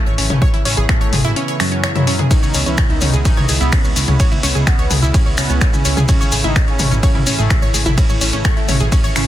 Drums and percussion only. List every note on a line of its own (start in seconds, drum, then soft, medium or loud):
0.18 open hi-hat loud
0.30 closed hi-hat soft
0.30 mid tom medium
0.42 kick loud
0.42 closed hi-hat soft
0.54 closed hi-hat soft
0.65 open hi-hat loud
0.77 closed hi-hat soft
0.89 finger snap loud
0.89 kick loud
0.89 closed hi-hat soft
1.01 closed hi-hat soft
1.13 open hi-hat loud
1.13 mid tom medium
1.25 closed hi-hat soft
1.36 closed hi-hat medium
1.48 closed hi-hat soft
1.60 finger snap medium
1.60 open hi-hat loud
1.72 closed hi-hat soft
1.84 finger snap loud
1.84 closed hi-hat medium
1.96 closed hi-hat soft
1.96 mid tom medium
2.07 open hi-hat loud
2.19 closed hi-hat soft
2.19 mid tom medium
2.31 kick loud
2.31 closed hi-hat soft
2.31 ride medium
2.31 maracas medium
2.43 maracas soft
2.54 open hi-hat loud
2.54 maracas medium
2.66 closed hi-hat soft
2.66 maracas soft
2.77 finger snap loud
2.77 kick loud
2.77 closed hi-hat soft
2.77 ride medium
2.77 maracas medium
2.90 closed hi-hat soft
3.01 open hi-hat loud
3.01 mid tom medium
3.01 maracas medium
3.14 closed hi-hat soft
3.14 maracas soft
3.25 kick loud
3.25 closed hi-hat soft
3.25 ride medium
3.25 maracas soft
3.37 mid tom medium
3.49 open hi-hat loud
3.49 maracas medium
3.61 maracas soft
3.72 finger snap loud
3.72 kick loud
3.72 closed hi-hat soft
3.72 ride medium
3.72 maracas soft
3.84 maracas soft
3.96 open hi-hat loud
3.96 maracas loud
4.07 closed hi-hat soft
4.07 mid tom medium
4.07 maracas soft
4.20 kick loud
4.20 closed hi-hat soft
4.20 ride medium
4.20 maracas medium
4.32 maracas soft
4.43 open hi-hat loud
4.43 maracas medium
4.55 closed hi-hat soft
4.55 maracas soft
4.67 finger snap loud
4.67 kick loud
4.67 closed hi-hat soft
4.67 ride medium
4.67 maracas soft
4.79 closed hi-hat soft
4.91 open hi-hat loud
4.91 mid tom medium
4.91 maracas loud
5.03 closed hi-hat soft
5.03 maracas soft
5.14 kick loud
5.14 closed hi-hat soft
5.14 ride medium
5.14 maracas medium
5.38 finger snap medium
5.38 open hi-hat loud
5.38 maracas medium
5.50 closed hi-hat soft
5.50 maracas soft
5.61 finger snap loud
5.61 kick loud
5.61 closed hi-hat soft
5.61 ride medium
5.61 maracas medium
5.73 maracas soft
5.85 open hi-hat loud
5.85 maracas medium
5.97 closed hi-hat soft
5.97 mid tom medium
5.97 maracas soft
6.08 kick loud
6.08 closed hi-hat soft
6.08 ride medium
6.08 maracas medium
6.21 maracas soft
6.32 open hi-hat loud
6.32 maracas loud
6.44 maracas soft
6.56 finger snap loud
6.56 kick loud
6.56 closed hi-hat soft
6.56 ride medium
6.56 maracas medium
6.68 closed hi-hat soft
6.79 open hi-hat loud
6.79 mid tom medium
6.79 maracas medium
6.92 closed hi-hat soft
6.92 maracas soft
7.03 kick loud
7.03 closed hi-hat soft
7.03 ride medium
7.03 maracas medium
7.15 mid tom medium
7.27 open hi-hat loud
7.27 maracas medium
7.39 closed hi-hat soft
7.39 maracas soft
7.50 finger snap loud
7.50 kick loud
7.50 closed hi-hat soft
7.50 ride medium
7.50 maracas medium
7.63 maracas soft
7.74 open hi-hat loud
7.74 maracas loud
7.86 closed hi-hat soft
7.86 mid tom medium
7.86 maracas soft
7.98 kick loud
7.98 closed hi-hat soft
7.98 ride medium
7.98 maracas medium
8.09 maracas soft
8.21 open hi-hat loud
8.21 maracas loud
8.33 closed hi-hat soft
8.33 maracas soft
8.45 finger snap loud
8.45 kick loud
8.45 closed hi-hat soft
8.45 ride medium
8.45 maracas medium
8.57 closed hi-hat soft
8.69 open hi-hat loud
8.69 mid tom loud
8.69 maracas medium
8.80 closed hi-hat soft
8.80 maracas soft
8.92 kick loud
8.92 closed hi-hat soft
8.92 ride medium
8.92 maracas medium
9.04 closed hi-hat soft
9.04 maracas soft
9.16 finger snap medium
9.16 open hi-hat loud
9.16 maracas medium